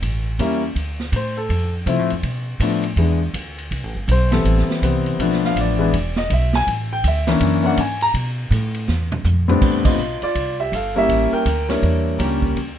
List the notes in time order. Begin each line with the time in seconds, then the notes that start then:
0.02 A1, kick, ride
0.39 E2 G3 A#3 C#4 E4, kick, hi-hat pedal, ride
0.75 D2, kick, ride
0.99 snare
1.12 A2 C5, kick, hi-hat pedal, ride
1.37 A4
1.49 F2, kick, ride
1.86 C3 F3 A3 C4 E4, kick, hi-hat pedal, ride
1.99 A2
2.10 F2, ride
2.23 B2, kick, ride
2.60 A2 F3 A3 B3 D4, kick, hi-hat pedal, ride
2.83 ride
2.96 E2 E3 G#3 B3 D4, kick, ride
3.34 D2, kick, hi-hat pedal, ride
3.58 ride
3.71 C2, kick, ride
3.83 A1
3.95 G1
4.08 B1 C5, kick, hi-hat pedal, ride
4.31 E3 G3 B3 C4 A4, snare, ride
4.45 A1, kick, ride
4.58 snare
4.68 muted upright bass stroke, snare
4.82 C2 E3 G3 B3 C4, kick, hi-hat pedal, ride
5.06 ride
5.19 B1 F3 A3 B3 D4, kick, ride
5.32 snare
5.44 F5, snare
5.56 A1, kick, hi-hat pedal, ride
5.61 D5
5.79 E3 G#3 B3 D4
5.93 E1, kick, ride
6.16 D#5, snare
6.30 B1 E5, kick, hi-hat pedal, ride
6.53 G#5, snare
6.67 A1, kick, ride
6.93 G5
7.04 D2 E5, kick, hi-hat pedal, ride
7.27 E3 A#3 C#4 D4, snare, ride
7.40 F#2, kick, ride
7.63 E3 A#3 C#4 D4 F#5
7.77 G#2 G#5, kick, hi-hat pedal, ride
8.01 A#5, ride
8.14 B2, kick, ride
8.51 A2, kick, hi-hat pedal, ride
8.74 ride
8.88 E2, snare
9.12 mid tom
9.25 F2, floor tom, hi-hat pedal
9.48 A2 G3 B3 C4 D4, floor tom
9.62 E2, kick, crash
9.85 F4 D#5, kick, crash
9.98 B1, hi-hat pedal
10.22 F4 D5, muted upright bass stroke, ride
10.35 C2, kick, ride
10.60 G4 E5
10.72 G1 A4 F5, kick, hi-hat pedal, ride
10.95 G3 A#3 C#4 E4 G4 E5
11.09 A1, kick, ride
11.33 A#4 G5, muted upright bass stroke
11.46 D2, kick, hi-hat pedal, ride
11.68 G3 A#3 D4 E4 A#4 C#5, snare, ride
11.83 E2, kick, ride
12.19 C#2 G3 A#3 C#4 G4, kick, hi-hat pedal, ride
12.42 kick
12.56 D2, kick, ride